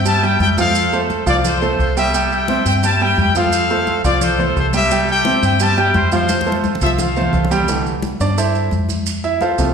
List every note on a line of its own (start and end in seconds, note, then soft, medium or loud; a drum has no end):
0.00 0.37 G2 loud
0.05 0.20 G3 medium
0.05 0.20 G4 medium
0.05 0.72 E5 medium
0.05 0.20 G5 medium
0.05 0.22 A5 loud
0.05 high conga soft
0.05 maracas medium
0.22 0.51 G3 medium
0.22 0.52 G4 medium
0.22 0.52 G5 loud
0.22 0.40 G5 loud
0.22 high conga soft
0.22 maracas soft
0.40 1.21 F2 medium
0.40 0.49 G5 loud
0.40 high conga medium
0.40 maracas soft
0.58 0.86 F3 loud
0.58 0.86 F4 medium
0.58 1.24 A4 medium
0.58 1.24 C5 medium
0.58 0.87 F5 loud
0.58 0.98 F5 loud
0.58 high conga medium
0.58 maracas medium
0.75 high conga soft
0.75 maracas medium
0.93 1.21 A3 medium
0.93 1.21 A4 medium
0.93 1.21 C5 medium
0.93 high conga soft
0.93 maracas soft
1.10 high conga medium
1.10 maracas soft
1.26 1.75 C2 loud
1.26 1.55 F3 medium
1.26 1.55 F4 medium
1.26 1.36 D5 medium
1.26 1.56 F5 loud
1.26 maracas medium
1.44 2.10 F4 medium
1.44 1.96 A4 medium
1.44 1.77 C5 medium
1.44 high conga soft
1.44 low conga medium
1.44 maracas medium
1.62 1.90 A3 medium
1.62 1.91 A4 medium
1.62 1.91 C5 medium
1.62 high conga soft
1.62 maracas soft
1.79 2.60 C2 medium
1.79 1.96 C5 medium
1.79 high conga soft
1.79 maracas soft
1.97 2.11 G3 loud
1.97 2.11 G4 loud
1.97 2.62 G4 medium
1.97 2.62 A4 medium
1.97 2.29 E5 loud
1.97 2.11 G5 medium
1.97 maracas medium
2.14 2.42 G3 medium
2.14 2.43 G4 medium
2.14 2.43 G5 medium
2.14 high conga soft
2.14 maracas medium
2.31 2.84 E5 medium
2.31 2.66 G5 loud
2.31 high conga soft
2.31 maracas soft
2.48 2.77 C4 medium
2.48 2.78 C5 medium
2.48 2.78 E5 medium
2.48 high conga loud
2.48 maracas soft
2.65 3.14 G2 loud
2.65 2.75 G5 loud
2.65 high conga soft
2.65 maracas medium
2.83 2.97 G3 medium
2.83 2.98 G4 medium
2.83 3.49 E5 medium
2.83 2.98 G5 medium
2.83 3.00 A5 loud
2.83 high conga soft
2.83 maracas medium
3.00 3.29 G3 medium
3.00 3.29 G4 medium
3.00 3.30 G5 medium
3.00 3.19 G5 loud
3.00 high conga soft
3.00 maracas soft
3.18 3.99 F2 medium
3.18 3.35 G5 loud
3.18 high conga medium
3.18 maracas soft
3.35 3.64 F3 medium
3.35 3.65 F4 medium
3.35 4.01 A4 medium
3.35 4.01 C5 medium
3.35 3.65 F5 loud
3.35 4.01 F5 loud
3.35 high conga medium
3.35 maracas medium
3.52 high conga soft
3.52 maracas loud
3.70 3.99 A3 medium
3.70 3.99 A4 medium
3.70 3.99 C5 medium
3.70 high conga soft
3.70 maracas soft
3.87 high conga medium
3.87 maracas soft
4.04 4.53 C2 loud
4.04 4.33 F3 medium
4.04 4.33 F4 medium
4.04 4.21 D5 medium
4.04 4.33 F5 medium
4.04 maracas medium
4.21 4.87 F4 medium
4.21 4.74 A4 medium
4.21 4.56 C5 medium
4.21 high conga soft
4.21 low conga medium
4.21 maracas medium
4.38 4.68 A3 medium
4.38 4.68 A4 medium
4.38 4.68 C5 medium
4.38 high conga soft
4.38 low conga medium
4.38 maracas soft
4.56 5.37 C2 loud
4.56 4.65 C5 medium
4.56 high conga soft
4.56 maracas soft
4.73 4.88 G3 medium
4.73 4.88 G4 medium
4.73 5.40 G4 medium
4.73 5.40 A4 medium
4.73 5.07 E5 loud
4.73 4.88 G5 loud
4.73 high conga medium
4.73 maracas medium
4.90 5.20 G3 medium
4.90 5.20 G4 medium
4.90 5.20 G5 medium
4.90 high conga soft
4.90 maracas loud
5.08 5.60 E5 medium
5.08 5.41 G5 loud
5.08 high conga soft
5.08 maracas soft
5.25 5.54 C4 medium
5.25 5.54 C5 medium
5.25 5.54 E5 medium
5.25 high conga loud
5.25 maracas soft
5.42 5.91 G2 loud
5.42 5.60 G5 loud
5.42 high conga soft
5.42 maracas medium
5.60 5.74 G3 medium
5.60 5.75 G4 medium
5.60 6.26 E5 medium
5.60 5.75 G5 medium
5.60 5.79 A5 loud
5.60 high conga soft
5.60 maracas medium
5.77 6.06 G3 loud
5.77 6.06 G4 medium
5.77 6.06 G5 loud
5.77 5.96 G5 medium
5.77 maracas soft
5.94 6.76 F2 loud
5.94 6.12 C5 medium
5.94 high conga medium
5.94 maracas soft
6.12 6.41 F3 loud
6.12 6.78 F4 medium
6.12 6.41 F4 medium
6.12 6.78 A4 medium
6.12 6.52 C5 medium
6.12 6.41 F5 medium
6.12 high conga medium
6.12 maracas medium
6.29 high conga medium
6.29 maracas medium
6.41 high conga medium
6.46 6.75 A3 medium
6.46 6.75 A4 medium
6.46 6.75 C5 medium
6.46 maracas soft
6.52 high conga medium
6.64 high conga medium
6.64 maracas soft
6.75 low conga medium
6.81 7.30 C2 medium
6.81 7.10 F3 medium
6.81 7.11 F4 medium
6.81 6.90 E5 medium
6.81 7.11 F5 medium
6.81 maracas medium
6.86 high conga medium
6.98 7.65 A4 medium
6.98 7.65 C5 medium
6.98 7.48 F5 medium
6.98 low conga medium
6.98 maracas medium
7.16 7.45 A3 medium
7.16 7.45 A4 medium
7.16 7.45 C5 medium
7.16 maracas soft
7.21 low conga medium
7.33 8.14 C2 medium
7.33 low conga loud
7.33 maracas soft
7.45 low conga medium
7.51 7.65 G3 loud
7.51 7.65 G4 medium
7.51 7.66 G5 medium
7.51 maracas medium
7.56 low conga medium
7.68 7.91 D3 medium
7.68 7.91 E3 medium
7.68 7.92 A3 medium
7.68 high conga soft
7.68 maracas medium
7.85 high conga soft
7.85 maracas soft
8.02 high conga loud
8.02 maracas soft
8.19 8.69 G2 loud
8.19 8.38 D4 medium
8.19 8.37 D5 medium
8.19 high conga soft
8.19 maracas medium
8.37 8.70 E4 medium
8.37 8.70 A4 medium
8.37 8.70 C5 medium
8.37 8.70 E5 medium
8.37 high conga soft
8.37 maracas medium
8.54 high conga soft
8.54 maracas soft
8.71 9.53 F2 medium
8.71 high conga medium
8.71 maracas soft
8.89 high conga medium
8.89 maracas medium
9.06 high conga soft
9.06 maracas medium
9.24 9.41 E4 medium
9.24 9.41 E5 medium
9.24 high conga soft
9.24 maracas soft
9.41 9.74 F4 medium
9.41 9.74 A4 medium
9.41 9.74 C5 medium
9.41 9.74 F5 medium
9.41 high conga medium
9.41 maracas soft
9.58 9.74 C2 medium
9.58 9.74 C3 medium
9.58 9.74 F3 medium
9.58 9.74 A3 medium
9.58 maracas medium